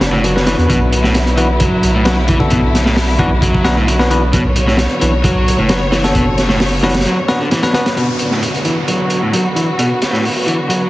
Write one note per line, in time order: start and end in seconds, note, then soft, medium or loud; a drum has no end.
0.00 0.55 F#1 medium
0.00 7.93 D3 medium
0.00 7.93 F#3 medium
0.00 7.93 B3 medium
0.00 0.69 D4 medium
0.00 snare loud
0.00 closed hi-hat medium
0.13 0.23 A2 medium
0.24 0.33 F#3 loud
0.24 closed hi-hat medium
0.36 0.45 B3 medium
0.36 0.45 D4 medium
0.36 0.45 F#4 medium
0.36 0.45 B4 medium
0.36 snare medium
0.46 0.56 E3 medium
0.46 1.35 B3 medium
0.46 1.35 D4 medium
0.46 1.35 F#4 medium
0.46 1.35 B4 medium
0.46 snare loud
0.46 closed hi-hat medium
0.58 0.67 E2 loud
0.58 closed hi-hat soft
0.69 1.69 B1 loud
0.69 0.79 B2 medium
0.69 4.32 E4 medium
0.69 kick loud
0.69 closed hi-hat medium
0.92 closed hi-hat medium
1.04 1.14 A2 loud
1.04 snare soft
1.15 snare loud
1.15 closed hi-hat medium
1.27 closed hi-hat soft
1.37 1.47 E3 medium
1.37 1.49 B3 medium
1.37 1.49 D4 medium
1.37 1.49 F#4 medium
1.37 1.49 B4 medium
1.37 closed hi-hat medium
1.60 1.93 F#3 medium
1.60 kick loud
1.60 closed hi-hat medium
1.83 2.37 B1 medium
1.83 closed hi-hat medium
1.94 2.05 A2 loud
2.05 2.15 F#3 loud
2.05 2.17 B3 medium
2.05 2.17 D4 medium
2.05 2.17 F#4 medium
2.05 2.17 B4 medium
2.05 snare loud
2.05 closed hi-hat medium
2.28 2.38 E3 medium
2.28 kick loud
2.28 closed hi-hat medium
2.40 3.17 B3 medium
2.40 3.17 D4 medium
2.40 3.17 F#4 medium
2.40 3.17 A4 medium
2.40 kick medium
2.50 3.51 B1 medium
2.50 2.61 B2 medium
2.50 kick loud
2.50 closed hi-hat medium
2.75 snare medium
2.75 closed hi-hat medium
2.86 2.96 A2 loud
2.86 snare soft
2.97 snare loud
2.97 open hi-hat medium
3.19 3.29 E3 medium
3.19 3.31 B3 medium
3.19 3.31 D4 medium
3.19 3.31 F#4 medium
3.19 3.31 B4 loud
3.19 kick loud
3.19 closed hi-hat medium
3.42 3.76 F#3 medium
3.42 kick loud
3.42 closed hi-hat medium
3.54 kick medium
3.64 4.87 B1 medium
3.64 3.76 B3 medium
3.64 3.76 D4 medium
3.64 3.76 F#4 medium
3.64 3.76 B4 loud
3.64 snare loud
3.64 closed hi-hat medium
3.77 3.87 A2 medium
3.87 3.97 F#3 loud
3.87 closed hi-hat medium
3.99 4.09 B3 medium
3.99 4.09 D4 medium
3.99 4.09 F#4 medium
3.99 4.09 B4 loud
3.99 snare soft
4.10 4.20 E3 medium
4.10 4.22 B3 medium
4.10 4.22 D4 medium
4.10 4.22 F#4 medium
4.10 4.22 B4 medium
4.10 closed hi-hat medium
4.33 4.43 B2 medium
4.33 7.96 C#5 medium
4.33 kick loud
4.33 closed hi-hat medium
4.56 closed hi-hat medium
4.67 4.78 A2 loud
4.67 snare soft
4.77 snare loud
4.77 closed hi-hat medium
4.89 closed hi-hat soft
5.01 5.55 B1 loud
5.01 5.11 E3 medium
5.01 5.13 B3 medium
5.01 5.13 D4 medium
5.01 5.13 F#4 medium
5.01 5.13 B4 medium
5.01 closed hi-hat medium
5.24 5.57 F#3 medium
5.24 kick loud
5.24 closed hi-hat loud
5.48 closed hi-hat medium
5.58 7.06 F#1 medium
5.58 5.69 A2 loud
5.69 5.79 F#3 loud
5.69 5.81 B3 medium
5.69 5.81 D4 medium
5.69 5.81 F#4 medium
5.69 5.81 B4 medium
5.69 snare loud
5.69 closed hi-hat medium
5.92 6.02 E3 medium
5.92 snare loud
5.92 closed hi-hat medium
6.04 6.81 B3 medium
6.04 6.81 D4 medium
6.04 6.81 F#4 medium
6.04 6.81 A4 medium
6.04 snare loud
6.04 closed hi-hat medium
6.15 6.24 B2 medium
6.15 kick loud
6.15 closed hi-hat medium
6.38 snare medium
6.38 closed hi-hat medium
6.49 6.60 A2 loud
6.49 snare soft
6.60 snare loud
6.60 open hi-hat medium
6.83 6.92 E3 medium
6.83 6.95 B3 medium
6.83 6.95 D4 medium
6.83 6.95 F#4 medium
6.83 6.94 B4 loud
6.83 snare medium
6.83 closed hi-hat medium
6.88 snare medium
6.88 closed hi-hat medium
6.94 snare medium
6.94 closed hi-hat medium
7.01 snare medium
7.01 closed hi-hat medium
7.05 7.16 F#3 medium
7.05 closed hi-hat medium
7.28 7.40 B3 medium
7.28 7.40 D4 medium
7.28 7.40 F#4 medium
7.28 7.40 B4 loud
7.28 snare loud
7.28 closed hi-hat medium
7.41 7.50 D3 medium
7.51 7.62 E3 medium
7.51 snare loud
7.51 closed hi-hat medium
7.63 7.73 B3 medium
7.63 7.73 D4 medium
7.63 7.73 F#4 medium
7.63 7.73 B4 loud
7.63 snare medium
7.63 closed hi-hat medium
7.73 7.85 B3 medium
7.73 7.80 B3 medium
7.73 7.85 D4 medium
7.73 7.85 F#4 medium
7.73 7.85 B4 loud
7.73 snare loud
7.73 closed hi-hat medium
7.86 snare loud
7.86 closed hi-hat medium
7.97 8.06 B2 medium
7.97 10.90 D3 medium
7.97 10.90 F#3 medium
7.97 10.90 B3 medium
7.97 10.90 D4 medium
7.97 10.90 F#4 medium
7.97 10.90 B4 medium
7.97 closed hi-hat medium
7.97 downlifter medium
8.19 closed hi-hat medium
8.31 8.42 A2 medium
8.31 snare soft
8.43 closed hi-hat medium
8.54 closed hi-hat soft
8.65 8.74 E3 medium
8.65 closed hi-hat medium
8.88 9.21 F#3 medium
8.88 closed hi-hat medium
9.10 closed hi-hat medium
9.22 9.33 A2 medium
9.33 9.42 F#3 medium
9.33 closed hi-hat medium
9.56 9.65 E3 medium
9.56 closed hi-hat medium
9.79 9.88 B2 medium
9.79 closed hi-hat medium
10.02 snare medium
10.02 closed hi-hat medium
10.13 10.23 A2 medium
10.13 snare soft
10.25 open hi-hat medium
10.46 10.56 E3 medium
10.46 closed hi-hat medium
10.69 10.90 F#3 medium
10.69 closed hi-hat medium